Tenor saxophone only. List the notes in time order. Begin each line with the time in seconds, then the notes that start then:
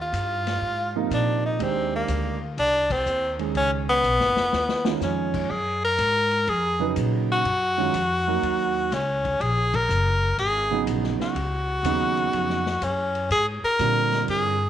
0.01 F4
1.14 D4
1.46 D#4
1.63 C4
1.96 A#3
2.59 D4
2.92 C4
3.57 C#4
3.89 B3
5.03 C#4
5.51 G#4
5.85 A#4
6.49 G#4
7.32 F#4
8.94 C#4
9.41 G#4
9.75 A#4
10.39 G#4
11.22 F#4
12.84 C#4
13.32 G#4
13.65 A#4
14.30 G#4